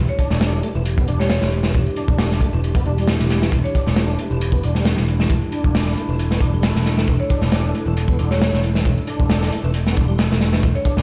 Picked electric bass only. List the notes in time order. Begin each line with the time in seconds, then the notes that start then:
0.31 E1
0.75 E1
1.08 E1
1.42 E1
1.75 E1
2.08 E1
2.53 E1
2.86 E1
3.20 E1
3.52 E1
3.86 E1
4.31 E1
4.63 E1
4.98 E1
5.30 E1
5.64 E1
6.09 E1
6.41 E1
6.75 E1
7.08 E1
7.42 E1
7.86 E1
8.19 E1
8.53 E1
8.85 E1
9.20 E1
9.64 E1
9.97 E1
10.30 E1
10.63 E1
10.97 E1